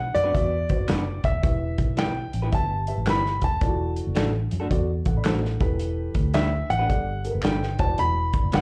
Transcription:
Already playing: B1 F#5
0.14 F#2 D5, closed hi-hat
0.24 B3 D4 F#4 B4
0.33 E2 F#4 B4 E5, kick, closed hi-hat
0.69 F#1 F#4 B4 C5, kick, closed hi-hat
0.76 D5
0.88 F#1 B3 D4 F#4 B4, finger snap, snare, closed hi-hat
1.24 D#1 E5, kick, closed hi-hat
1.43 E1 E3 G4 B4 E5, kick, closed hi-hat
1.78 B1, kick, closed hi-hat
1.97 B3 E4 G4 B4 G5, finger snap, snare, closed hi-hat
2.33 A1, closed hi-hat
2.42 B3 E4 G4 B4
2.52 G1 G4 B4 E5 A5, kick, closed hi-hat
2.87 G4 B4 E5, closed hi-hat
2.98 A1
3.06 G1 B3 E4 G4 B4, finger snap, snare, closed hi-hat
3.10 B5
3.26 snare
3.41 D#1 A5, kick, closed hi-hat
3.61 E1 E3 F4 A4 D5, kick, closed hi-hat
3.67 F#4
3.96 closed hi-hat
4.07 F#1
4.15 A1 A3 D4 F#4 A4, finger snap, snare, closed hi-hat
4.51 F#2, closed hi-hat
4.60 A3 D4 F#4 A4
4.70 E2 F#4 A4 D5, kick, closed hi-hat
5.05 A1 A4 F#5, kick, closed hi-hat
5.17 D5 B5
5.24 A1 A3 D4 F#4 A4 C5 A5, finger snap, snare, closed hi-hat
5.43 A4 F#5, snare
5.60 E1 E3 G4 A4 B4, kick, closed hi-hat
5.79 closed hi-hat
6.14 D2, kick, closed hi-hat
6.34 A3 D4 G4 B4 E5, finger snap, snare, closed hi-hat
6.70 A1 F#5, closed hi-hat
6.79 A3 D4 G4 B4
6.89 G1 G4 A4 D5, kick, closed hi-hat
7.24 G4 A4 A#4, closed hi-hat
7.31 F#1 B4
7.42 G1 A3 D4 G4 B4 G5, finger snap, snare, closed hi-hat
7.63 snare
7.79 E1 E3 F#4 B4 C#5 A5, kick, closed hi-hat
7.86 D5
7.98 E1 B5, closed hi-hat
8.33 kick, closed hi-hat
8.43 F#1
8.52 F#1 B3 D4 F#4 B4 F#5, finger snap, snare, closed hi-hat

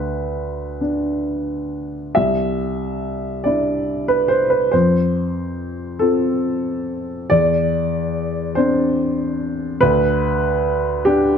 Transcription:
Already playing: D2 B4
0.81 D4
2.15 C2 E5
3.44 D4 E4 D5
4.08 B4
4.28 C5
4.50 B4
4.72 F2 C5
5.99 C4 F4 A4
7.30 E2 D5
8.55 C4 D4 C5
9.81 D2 B4
11.05 D4 G4

